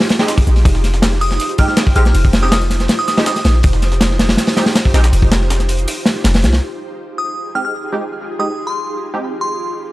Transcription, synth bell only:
0, 0, Header, 1, 2, 480
1, 0, Start_track
1, 0, Key_signature, -4, "minor"
1, 0, Tempo, 372671
1, 844, Time_signature, 4, 2, 24, 8
1, 12781, End_track
2, 0, Start_track
2, 0, Title_t, "Synth bell"
2, 0, Program_c, 0, 98
2, 1561, Note_on_c, 0, 87, 93
2, 1852, Note_off_c, 0, 87, 0
2, 2048, Note_on_c, 0, 89, 87
2, 2125, Note_off_c, 0, 89, 0
2, 2167, Note_on_c, 0, 89, 74
2, 2242, Note_off_c, 0, 89, 0
2, 2524, Note_on_c, 0, 89, 91
2, 2813, Note_off_c, 0, 89, 0
2, 3125, Note_on_c, 0, 87, 89
2, 3201, Note_off_c, 0, 87, 0
2, 3242, Note_on_c, 0, 87, 78
2, 3322, Note_off_c, 0, 87, 0
2, 3848, Note_on_c, 0, 87, 93
2, 3922, Note_off_c, 0, 87, 0
2, 3965, Note_on_c, 0, 87, 79
2, 4044, Note_off_c, 0, 87, 0
2, 4210, Note_on_c, 0, 87, 91
2, 4570, Note_off_c, 0, 87, 0
2, 9250, Note_on_c, 0, 87, 79
2, 9537, Note_off_c, 0, 87, 0
2, 9727, Note_on_c, 0, 89, 78
2, 9805, Note_off_c, 0, 89, 0
2, 9851, Note_on_c, 0, 89, 68
2, 9924, Note_off_c, 0, 89, 0
2, 10815, Note_on_c, 0, 87, 82
2, 11098, Note_off_c, 0, 87, 0
2, 11166, Note_on_c, 0, 84, 82
2, 11454, Note_off_c, 0, 84, 0
2, 12122, Note_on_c, 0, 84, 82
2, 12486, Note_off_c, 0, 84, 0
2, 12781, End_track
0, 0, End_of_file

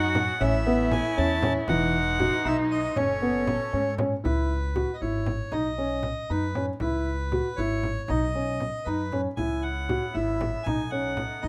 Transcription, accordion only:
0, 0, Header, 1, 2, 480
1, 0, Start_track
1, 0, Key_signature, 4, "minor"
1, 0, Tempo, 512383
1, 388, Time_signature, 5, 3, 24, 8
1, 10757, End_track
2, 0, Start_track
2, 0, Title_t, "Accordion"
2, 0, Program_c, 0, 21
2, 0, Note_on_c, 0, 78, 107
2, 378, Note_on_c, 0, 76, 98
2, 397, Note_off_c, 0, 78, 0
2, 861, Note_on_c, 0, 80, 94
2, 875, Note_off_c, 0, 76, 0
2, 1101, Note_on_c, 0, 81, 107
2, 1110, Note_off_c, 0, 80, 0
2, 1436, Note_off_c, 0, 81, 0
2, 1578, Note_on_c, 0, 78, 112
2, 2300, Note_on_c, 0, 76, 97
2, 2320, Note_off_c, 0, 78, 0
2, 2408, Note_off_c, 0, 76, 0
2, 2540, Note_on_c, 0, 75, 93
2, 2773, Note_on_c, 0, 73, 86
2, 2787, Note_off_c, 0, 75, 0
2, 3698, Note_off_c, 0, 73, 0
2, 3976, Note_on_c, 0, 71, 75
2, 4625, Note_on_c, 0, 75, 47
2, 4651, Note_off_c, 0, 71, 0
2, 4694, Note_off_c, 0, 75, 0
2, 4694, Note_on_c, 0, 73, 75
2, 5172, Note_on_c, 0, 75, 80
2, 5190, Note_off_c, 0, 73, 0
2, 5906, Note_on_c, 0, 71, 79
2, 5917, Note_off_c, 0, 75, 0
2, 6238, Note_off_c, 0, 71, 0
2, 6378, Note_on_c, 0, 71, 77
2, 7088, Note_on_c, 0, 73, 91
2, 7121, Note_off_c, 0, 71, 0
2, 7580, Note_on_c, 0, 75, 92
2, 7589, Note_off_c, 0, 73, 0
2, 8291, Note_on_c, 0, 71, 81
2, 8324, Note_off_c, 0, 75, 0
2, 8631, Note_off_c, 0, 71, 0
2, 8775, Note_on_c, 0, 80, 91
2, 9015, Note_on_c, 0, 78, 89
2, 9027, Note_off_c, 0, 80, 0
2, 9500, Note_on_c, 0, 76, 89
2, 9515, Note_off_c, 0, 78, 0
2, 9962, Note_on_c, 0, 80, 89
2, 9998, Note_off_c, 0, 76, 0
2, 10216, Note_on_c, 0, 78, 89
2, 10221, Note_off_c, 0, 80, 0
2, 10699, Note_on_c, 0, 75, 88
2, 10716, Note_off_c, 0, 78, 0
2, 10757, Note_off_c, 0, 75, 0
2, 10757, End_track
0, 0, End_of_file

